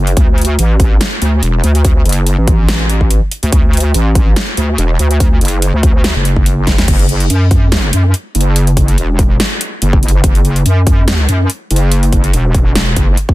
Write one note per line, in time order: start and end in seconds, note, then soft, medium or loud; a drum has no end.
0.00 0.15 F#1 loud
0.07 closed hi-hat soft
0.17 0.57 D2 loud
0.17 kick loud
0.17 closed hi-hat medium
0.38 closed hi-hat soft
0.42 closed hi-hat medium
0.45 closed hi-hat medium
0.59 0.99 A1 loud
0.59 closed hi-hat medium
0.80 kick loud
0.80 closed hi-hat medium
1.01 snare loud
1.01 closed hi-hat medium
1.22 1.41 D2 loud
1.22 closed hi-hat medium
1.43 1.62 E1 loud
1.43 closed hi-hat medium
1.64 2.04 D2 loud
1.64 closed hi-hat medium
1.75 closed hi-hat soft
1.85 kick loud
1.85 closed hi-hat medium
2.06 2.36 F#1 loud
2.06 closed hi-hat soft
2.09 closed hi-hat medium
2.13 closed hi-hat medium
2.27 closed hi-hat medium
2.38 3.20 A1 loud
2.48 kick loud
2.48 closed hi-hat medium
2.69 snare loud
2.69 closed hi-hat medium
2.90 closed hi-hat medium
3.01 kick medium
3.11 closed hi-hat medium
3.31 closed hi-hat soft
3.43 3.51 D2 loud
3.43 closed hi-hat soft
3.52 3.93 D2 loud
3.52 kick loud
3.52 closed hi-hat medium
3.73 closed hi-hat soft
3.77 closed hi-hat medium
3.80 closed hi-hat medium
3.94 4.35 A1 loud
3.94 closed hi-hat medium
4.15 kick loud
4.15 closed hi-hat medium
4.36 snare loud
4.36 closed hi-hat medium
4.57 4.77 D2 loud
4.57 closed hi-hat medium
4.78 4.98 E1 loud
4.78 closed hi-hat medium
4.99 5.40 D2 loud
4.99 closed hi-hat medium
5.11 closed hi-hat soft
5.20 kick loud
5.20 closed hi-hat medium
5.41 5.72 F#1 loud
5.41 closed hi-hat soft
5.45 closed hi-hat medium
5.48 closed hi-hat medium
5.62 closed hi-hat medium
5.74 6.14 D2 loud
5.83 kick loud
5.83 closed hi-hat medium
6.04 snare loud
6.04 closed hi-hat medium
6.15 6.77 F#1 loud
6.25 closed hi-hat medium
6.36 kick medium
6.46 closed hi-hat medium
6.67 kick medium
6.67 snare medium
6.67 closed hi-hat medium
6.78 6.87 D2 loud
6.78 snare medium
6.78 closed hi-hat soft
6.88 7.28 F#1 loud
6.88 kick loud
6.88 closed hi-hat medium
6.88 crash loud
6.99 closed hi-hat soft
7.09 closed hi-hat medium
7.20 closed hi-hat soft
7.30 7.91 F#2 loud
7.30 closed hi-hat medium
7.51 kick loud
7.51 closed hi-hat medium
7.72 snare loud
7.72 closed hi-hat medium
7.93 8.12 F#2 loud
7.93 closed hi-hat medium
8.14 closed hi-hat medium
8.35 8.96 F#1 loud
8.35 closed hi-hat medium
8.41 closed hi-hat medium
8.56 closed hi-hat medium
8.67 closed hi-hat soft
8.77 kick medium
8.77 closed hi-hat medium
8.88 closed hi-hat soft
8.98 9.38 E1 loud
8.98 closed hi-hat medium
9.19 kick loud
9.19 closed hi-hat medium
9.40 snare loud
9.40 closed hi-hat medium
9.61 closed hi-hat medium
9.82 10.01 F#1 loud
9.82 closed hi-hat medium
9.93 kick loud
10.03 10.22 F#1 loud
10.03 closed hi-hat medium
10.08 closed hi-hat medium
10.24 10.64 F#1 loud
10.24 kick loud
10.24 closed hi-hat medium
10.35 closed hi-hat soft
10.45 closed hi-hat medium
10.56 closed hi-hat soft
10.66 11.27 F#2 loud
10.66 closed hi-hat medium
10.87 kick loud
10.87 closed hi-hat medium
11.08 snare loud
11.08 closed hi-hat medium
11.29 11.48 F#2 medium
11.29 closed hi-hat medium
11.50 closed hi-hat medium
11.71 12.32 F#1 loud
11.71 closed hi-hat medium
11.76 closed hi-hat medium
11.92 closed hi-hat medium
12.03 closed hi-hat soft
12.13 kick medium
12.13 closed hi-hat medium
12.24 closed hi-hat soft
12.34 12.74 E1 loud
12.34 closed hi-hat medium
12.54 kick loud
12.54 closed hi-hat medium
12.75 12.95 E1 loud
12.75 snare loud
12.75 closed hi-hat medium
12.96 13.16 F#1 loud
12.96 kick medium
12.96 closed hi-hat medium
13.17 closed hi-hat medium
13.29 kick loud